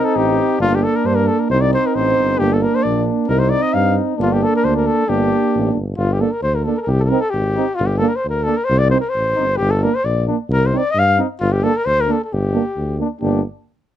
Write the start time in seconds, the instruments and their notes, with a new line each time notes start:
Already playing: euphonium C4, trombone D#4
0.05 cornet A4
0.15 tuba A1, cornet G4
0.59 tuba G1, euphonium A#3, trombone D4, cornet F4
0.75 cornet G4
0.83 cornet A4
0.96 cornet A#4
1.05 tuba G2, cornet C5
1.15 cornet A#4
1.27 cornet A4
1.40 cornet A#4
1.49 tuba C2, euphonium C4, trombone D#4, cornet C5
1.61 cornet D5
1.74 cornet C5
1.87 cornet A#4
1.95 tuba A1, cornet C5
2.18 tuba G1
2.39 tuba G1, euphonium A#3, trombone D4, cornet G4
2.53 cornet A4
2.62 cornet A#4
2.75 cornet C5
2.83 tuba A#1, cornet D5
3.27 tuba C2, euphonium C4, trombone D#4, cornet A#4
3.39 cornet C5
3.49 cornet D5
3.62 cornet D#5
3.74 tuba G2, cornet F5
4.17 tuba G1, euphonium A#3, trombone D4
4.22 cornet F4
4.33 cornet G4
4.43 cornet A4
4.56 cornet A#4
4.64 tuba D2, cornet C5
4.76 cornet A#4
4.86 cornet A4
5.07 tuba G1, euphonium A#3, trombone D4, cornet G4
5.55 tuba A1
5.75 tuba G1
5.97 tuba G1, cornet F4
6.13 cornet G4
6.19 euphonium A#3, trombone D4, cornet A4
6.32 cornet A#4
6.42 tuba D2, cornet C5
6.55 cornet A#4
6.64 euphonium A#3, trombone D4, cornet A4
6.77 cornet A4 A#4
6.81 cornet A#4
6.87 tuba C2, cornet G4
7.00 cornet A4
7.08 euphonium C4, trombone D#4, cornet A#4
7.20 cornet A4
7.30 tuba G#1, cornet G4
7.56 euphonium C4, trombone D#4
7.75 cornet F4
7.79 tuba G1
7.86 cornet G4
7.98 euphonium A#3, trombone D4, cornet A4
8.09 cornet A#4
8.16 cornet C5
8.24 tuba D2
8.30 cornet A#4
8.43 euphonium A#3, trombone D4, cornet A4
8.57 cornet A#4
8.65 cornet C5
8.70 tuba C2
8.78 cornet D5
8.90 euphonium C4, trombone D#4, cornet C5
9.01 cornet A#4
9.09 cornet C5
9.15 tuba A1
9.35 tuba G1, euphonium C4, trombone D#4
9.57 tuba G1, cornet G4
9.70 cornet A4
9.82 euphonium A#3, trombone D4, cornet A#4
9.95 cornet C5
10.04 tuba A#1, cornet D5
10.27 euphonium A#3, trombone D4
10.48 tuba C2
10.53 cornet A#4
10.66 cornet C5
10.72 euphonium C4, trombone D#4
10.77 cornet D5
10.91 tuba G2, cornet D#5
10.99 cornet F5
11.17 euphonium C4, trombone D#4
11.40 tuba G1, cornet F4
11.52 cornet G4
11.63 euphonium A#3, trombone D4, cornet A4
11.77 cornet A#4
11.85 tuba D2, cornet C5
12.01 cornet A#4
12.08 euphonium A#3, trombone D4
12.12 cornet A4
12.24 cornet A4
12.32 tuba G1, cornet G4
12.53 euphonium A#3, trombone D4
12.76 tuba D2
12.99 euphonium A#3, trombone D4
13.21 tuba G1, euphonium A#3, trombone D4, cornet G4